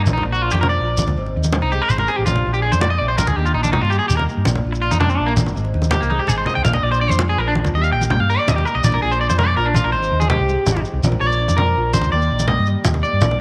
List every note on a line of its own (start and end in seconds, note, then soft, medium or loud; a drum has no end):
0.04 0.23 A#1 loud
0.04 1.14 A#2 medium
0.04 0.60 F3 medium
0.04 0.23 D4 medium
0.04 0.80 F4 medium
0.04 muted clean electric guitar stroke medium
0.04 high conga medium
0.04 shekere loud
0.09 1.15 A#4 medium
0.13 0.23 D#4 medium
0.18 low conga medium
0.23 0.49 A#1 medium
0.23 0.43 D4 medium
0.23 muted clean electric guitar stroke medium
0.32 0.42 F#4 medium
0.32 low conga soft
0.32 shekere soft
0.42 0.98 D4 medium
0.42 0.51 F4 medium
0.51 0.77 F2 medium
0.51 0.61 G4 medium
0.51 high conga medium
0.51 shekere medium
0.61 1.16 F3 medium
0.61 0.69 A#4 medium
0.61 low conga medium
0.69 1.04 D5 medium
0.69 low conga soft
0.80 1.04 A#1 medium
0.80 1.15 F4 medium
0.97 1.15 D4 medium
0.97 high conga medium
0.97 shekere loud
1.06 1.15 D2 medium
1.06 low conga medium
1.06 shekere soft
1.17 1.33 G#1 medium
1.17 2.24 G#2 medium
1.17 1.53 C4 medium
1.26 low conga soft
1.36 1.60 D#2 medium
1.36 1.91 D#4 medium
1.43 high conga medium
1.43 shekere medium
1.53 2.09 C4 medium
1.53 low conga loud
1.62 1.79 C2 medium
1.62 1.71 D#4 medium
1.62 low conga soft
1.72 2.24 G#3 medium
1.72 1.82 G4 medium
1.72 shekere soft
1.82 1.91 A#4 medium
1.89 2.06 G#1 medium
1.89 2.25 D#4 medium
1.89 1.99 C5 loud
1.89 shekere medium
1.98 2.08 A#4 medium
1.98 low conga medium
2.07 2.25 C4 medium
2.07 2.17 G#4 medium
2.07 low conga soft
2.07 shekere soft
2.17 2.26 A1 medium
2.17 2.25 G4 medium
2.26 2.43 A#1 loud
2.26 2.82 A#2 medium
2.26 2.46 D4 medium
2.26 2.52 F4 medium
2.26 high conga medium
2.26 shekere medium
2.36 low conga medium
2.46 2.70 A#1 medium
2.46 2.64 D4 medium
2.54 2.62 G4 medium
2.54 low conga soft
2.54 shekere soft
2.62 3.35 D4 medium
2.62 2.71 G#4 medium
2.72 2.97 F2 medium
2.72 2.81 C5 medium
2.72 high conga medium
2.72 shekere medium
2.81 3.00 A#2 medium
2.81 2.90 D5 medium
2.81 low conga medium
2.90 2.99 D#5 loud
2.90 low conga soft
2.99 3.25 A#1 loud
2.99 3.18 C3 medium
2.99 3.08 D5 medium
3.08 3.17 C5 medium
3.18 3.36 D3 medium
3.18 3.27 A#4 medium
3.18 high conga medium
3.18 shekere loud
3.27 3.36 D2 medium
3.27 3.36 G#4 medium
3.27 low conga medium
3.36 3.53 D#2 loud
3.36 4.45 D#3 medium
3.36 3.74 A#3 medium
3.36 3.45 G4 medium
3.46 3.54 F4 medium
3.46 low conga soft
3.46 shekere soft
3.54 3.78 A#1 medium
3.54 3.63 D#4 medium
3.54 4.10 D#4 medium
3.63 3.72 D4 medium
3.63 high conga medium
3.63 shekere medium
3.72 4.29 A#3 medium
3.72 3.81 D#4 medium
3.72 low conga loud
3.81 3.98 G2 medium
3.81 3.91 F4 medium
3.81 low conga soft
3.90 4.45 G3 medium
3.90 3.98 G4 medium
3.90 shekere soft
3.99 4.08 G#4 medium
4.08 4.26 D#2 medium
4.08 4.17 G4 medium
4.08 shekere loud
4.13 4.45 D#4 medium
4.17 4.23 A#4 medium
4.17 low conga medium
4.29 4.47 A#3 medium
4.29 low conga soft
4.29 shekere soft
4.37 4.45 G2 medium
4.45 4.62 A#1 loud
4.45 5.37 A#2 medium
4.45 4.83 D4 medium
4.45 high conga loud
4.45 low conga soft
4.45 shekere loud
4.55 low conga medium
4.65 4.89 A#1 medium
4.65 5.55 F4 medium
4.72 muted clean electric guitar stroke medium
4.72 low conga soft
4.72 shekere soft
4.82 5.54 D4 medium
4.82 4.91 F4 medium
4.82 low conga soft
4.91 5.16 F2 medium
4.91 5.00 D#4 medium
4.91 high conga medium
4.91 shekere medium
5.00 5.19 D3 medium
5.00 5.09 D4 medium
5.00 low conga loud
5.09 5.17 C4 medium
5.09 shekere soft
5.17 5.44 A#1 medium
5.17 5.37 C3 medium
5.17 5.27 D4 medium
5.26 5.32 A#3 medium
5.26 low conga soft
5.37 5.55 A#2 medium
5.37 high conga medium
5.37 low conga soft
5.37 shekere loud
5.46 5.55 G1 medium
5.46 low conga medium
5.46 shekere soft
5.55 5.72 G#1 loud
5.55 6.63 G#2 medium
5.55 5.92 C4 medium
5.55 low conga soft
5.55 shekere soft
5.65 low conga soft
5.74 5.98 D#2 medium
5.74 6.28 D#4 medium
5.74 low conga soft
5.82 high conga medium
5.82 low conga soft
5.82 shekere medium
5.91 6.48 C4 medium
5.91 6.01 G4 medium
5.91 low conga loud
5.91 shekere soft
6.01 6.18 C2 medium
6.01 6.10 A#3 medium
6.01 shekere soft
6.10 6.63 G#3 medium
6.10 6.19 D#4 medium
6.10 high conga medium
6.19 6.28 G4 medium
6.27 6.45 G#1 loud
6.27 6.64 D#4 medium
6.27 6.37 G#4 medium
6.27 low conga medium
6.27 shekere loud
6.38 6.46 C5 medium
6.46 6.64 C4 medium
6.46 6.55 D#5 medium
6.46 low conga medium
6.46 shekere soft
6.55 6.65 C2 medium
6.55 6.64 G5 loud
6.64 6.82 A#1 loud
6.64 7.73 A#2 medium
6.64 7.00 D4 medium
6.64 6.74 F5 medium
6.64 high conga medium
6.64 shekere medium
6.73 6.83 D#5 medium
6.73 low conga medium
6.83 7.07 A#1 medium
6.83 7.38 F4 medium
6.83 6.91 D5 loud
6.92 7.01 C5 loud
6.92 low conga soft
6.92 shekere soft
7.01 7.56 D4 medium
7.01 7.10 D5 medium
7.09 7.35 F2 medium
7.09 7.19 C5 medium
7.09 high conga medium
7.09 shekere medium
7.19 7.75 F3 medium
7.19 low conga medium
7.28 7.38 G#4 medium
7.28 low conga soft
7.38 7.62 A#1 medium
7.38 7.73 F4 medium
7.38 7.47 A#4 loud
7.48 7.53 D4 medium
7.55 7.73 D4 medium
7.55 high conga medium
7.65 7.73 D2 medium
7.65 low conga medium
7.65 shekere soft
7.74 7.90 D#2 medium
7.74 8.82 D#3 medium
7.74 8.28 G3 medium
7.74 8.11 A#3 medium
7.74 7.93 D#4 medium
7.74 8.86 G4 medium
7.74 7.84 D#5 medium
7.83 7.92 F5 medium
7.83 low conga soft
7.83 shekere soft
7.92 8.17 A#1 medium
7.92 8.47 D#4 medium
7.92 8.02 G5 medium
8.01 high conga medium
8.01 shekere medium
8.10 8.65 A#3 medium
8.10 8.20 G5 loud
8.10 low conga loud
8.20 8.36 G2 medium
8.20 8.29 F5 medium
8.20 low conga soft
8.29 8.82 G3 medium
8.29 8.38 A#4 medium
8.29 shekere soft
8.38 8.48 D5 medium
8.47 8.64 D#2 loud
8.47 8.82 D#4 medium
8.47 8.56 D#5 loud
8.47 high conga loud
8.47 shekere loud
8.56 8.65 G4 medium
8.56 low conga medium
8.65 8.85 A#3 medium
8.65 8.75 A#4 medium
8.65 low conga soft
8.65 shekere soft
8.75 8.83 B1 medium
8.75 8.84 D#5 loud
8.84 9.00 A#1 loud
8.84 9.92 A#2 medium
8.84 9.20 D4 medium
8.84 8.93 D5 medium
8.84 high conga medium
8.84 shekere loud
8.92 9.02 A#4 medium
8.92 low conga medium
9.02 9.27 A#1 medium
9.02 9.56 F4 medium
9.02 9.11 G#4 loud
9.11 9.20 C5 loud
9.11 low conga soft
9.11 shekere soft
9.21 9.73 D4 medium
9.21 9.29 D5 medium
9.30 9.55 F2 medium
9.30 9.39 C5 medium
9.30 high conga medium
9.30 shekere medium
9.38 9.93 F3 medium
9.38 9.47 A#4 loud
9.38 low conga medium
9.47 9.56 D5 medium
9.47 low conga soft
9.57 9.82 A#1 loud
9.57 9.91 F4 medium
9.57 9.66 A#4 loud
9.65 9.75 D4 medium
9.74 9.91 D4 medium
9.74 9.84 F4 medium
9.74 high conga medium
9.74 shekere loud
9.84 9.93 A#1 medium
9.84 9.92 A#4 medium
9.92 10.10 G#1 loud
9.92 11.01 G#2 medium
9.92 10.30 C4 medium
9.92 10.18 C5 loud
10.02 low conga soft
10.02 shekere soft
10.12 10.36 D#2 medium
10.12 10.66 D#4 medium
10.20 10.29 G#4 medium
10.20 high conga medium
10.20 shekere medium
10.30 10.84 C4 medium
10.30 10.81 G4 medium
10.30 low conga loud
10.39 10.56 C2 medium
10.49 11.02 G#3 medium
10.49 shekere soft
10.66 10.83 G#1 loud
10.66 11.02 D#4 medium
10.66 high conga loud
10.66 shekere medium
10.77 low conga medium
10.85 11.01 C4 medium
10.85 low conga soft
10.85 shekere soft
10.93 11.02 C2 medium
11.03 11.20 A#1 loud
11.03 12.11 A#2 medium
11.03 11.57 F3 medium
11.03 11.39 D4 medium
11.03 11.20 F4 medium
11.03 12.12 A#4 medium
11.03 high conga medium
11.03 shekere medium
11.12 low conga medium
11.21 11.46 A#1 medium
11.21 11.76 F4 medium
11.21 11.55 D5 loud
11.30 low conga soft
11.30 shekere soft
11.40 11.94 D4 medium
11.48 11.73 F2 medium
11.48 high conga medium
11.48 shekere medium
11.57 12.13 F3 medium
11.57 11.91 A#4 medium
11.57 low conga medium
11.67 low conga soft
11.77 12.01 A#1 loud
11.77 12.11 F4 medium
11.94 12.11 D4 medium
11.94 12.11 C5 medium
11.94 high conga medium
11.94 shekere loud
12.01 12.12 D2 medium
12.01 low conga medium
12.01 shekere soft
12.12 12.29 D#2 loud
12.12 13.20 D#3 medium
12.12 12.49 A#3 medium
12.12 12.46 D5 medium
12.21 low conga soft
12.21 shekere soft
12.31 12.55 A#1 medium
12.31 12.84 D#4 medium
12.39 high conga medium
12.39 shekere medium
12.48 13.03 A#3 medium
12.48 12.66 D#5 loud
12.48 low conga loud
12.59 12.75 G2 loud
12.66 13.20 G3 medium
12.66 shekere soft
12.85 13.02 D#2 loud
12.85 13.20 D#4 medium
12.85 high conga loud
12.85 shekere loud
12.94 low conga medium
13.03 13.21 A#3 medium
13.03 13.37 D5 medium
13.03 low conga soft
13.03 shekere soft
13.13 13.21 G2 medium
13.20 13.38 A#1 loud
13.20 13.41 A#2 medium
13.20 13.41 D4 medium
13.20 high conga loud
13.20 shekere loud
13.31 low conga medium